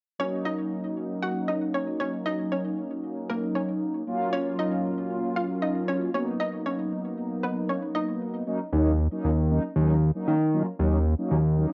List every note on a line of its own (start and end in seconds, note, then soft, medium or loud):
0.19 4.03 F#3 medium
0.19 4.03 A#3 medium
0.19 4.03 C#4 medium
0.19 0.38 C#4 medium
0.19 4.03 D#4 medium
0.19 0.37 C#5 loud
0.45 0.94 D#4 medium
0.45 0.94 D#5 medium
1.23 1.41 F#4 medium
1.23 1.41 F#5 medium
1.48 1.58 D#4 medium
1.48 1.57 D#5 medium
1.74 1.84 C#4 medium
1.74 1.83 C#5 medium
2.00 2.10 C#4 medium
2.00 2.09 C#5 medium
2.26 2.44 D#4 medium
2.26 2.44 D#5 loud
2.52 3.01 C#4 medium
2.52 3.01 C#5 medium
3.30 3.48 A#3 medium
3.30 3.47 A#4 medium
3.55 3.65 C#4 medium
3.55 3.64 C#5 medium
4.07 6.10 F#3 medium
4.07 6.10 A#3 medium
4.07 6.10 C#4 medium
4.07 6.10 F4 medium
4.33 4.51 C#4 medium
4.33 4.51 C#5 loud
4.59 5.08 D#4 medium
4.59 5.08 D#5 medium
5.36 5.55 F4 medium
5.36 5.54 F5 medium
5.62 5.72 D#4 medium
5.62 5.71 D#5 medium
5.88 5.98 C#4 medium
5.88 5.97 C#5 medium
6.13 8.42 F#3 medium
6.13 8.43 A#3 medium
6.13 8.43 B3 medium
6.13 6.24 C#4 medium
6.13 8.43 D#4 medium
6.13 6.23 C#5 medium
6.40 6.58 D#4 medium
6.40 6.58 D#5 medium
6.66 7.15 C#4 medium
6.66 7.14 C#5 medium
7.43 7.62 B3 medium
7.43 7.61 B4 medium
7.69 7.79 C#4 medium
7.69 7.78 C#5 medium
7.95 8.32 D#4 medium
7.95 8.31 D#5 medium
8.46 8.59 F#3 medium
8.46 8.59 A#3 medium
8.46 8.59 C#4 medium
8.46 8.59 D#4 loud
8.72 9.08 D#2 medium
8.72 8.91 F#3 medium
8.72 8.91 A#3 medium
8.72 8.91 C#4 medium
8.72 8.91 D#4 medium
9.11 9.30 F#3 medium
9.11 9.30 A#3 medium
9.11 9.30 C#4 medium
9.11 9.30 D#4 medium
9.24 9.60 D#2 medium
9.50 9.62 F#3 medium
9.50 9.63 A#3 medium
9.50 9.63 C#4 medium
9.50 9.63 D#4 medium
9.76 10.11 D#2 loud
9.76 9.95 F#3 medium
9.76 9.95 A#3 medium
9.76 9.95 C#4 medium
9.76 9.95 D#4 loud
10.15 10.33 F#3 medium
10.15 10.33 A#3 medium
10.15 10.33 C#4 medium
10.15 10.34 D#4 medium
10.28 10.63 D#3 medium
10.53 10.66 F#3 medium
10.53 10.66 A#3 medium
10.53 10.66 C#4 medium
10.53 10.66 F4 loud
10.79 11.15 D#2 loud
10.79 10.98 F#3 medium
10.79 10.98 A#3 medium
10.79 10.98 C#4 medium
10.79 10.98 D#4 loud
11.18 11.37 F#3 medium
11.18 11.37 A#3 medium
11.18 11.37 C#4 medium
11.18 11.37 D#4 loud
11.31 11.66 D#2 medium
11.57 11.69 F#3 medium
11.57 11.69 A#3 medium
11.57 11.70 C#4 medium
11.57 11.70 D#4 loud